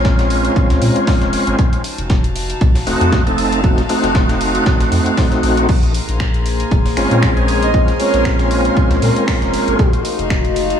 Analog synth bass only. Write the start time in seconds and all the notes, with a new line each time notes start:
Already playing: A#1
0.71 C#2
0.82 A#2
1.22 F1
1.47 G#1
1.99 F1
2.61 C2
2.87 D#1
3.01 F2
3.27 F1
4.04 F1
4.81 A1
4.92 F2
5.43 A#1
6.09 A#1
6.72 F1
6.97 G#1
7.11 A#2
7.37 A#1
8.14 A#1
8.91 C#2
9.02 A#2
9.42 F1
9.68 G#1
10.19 F1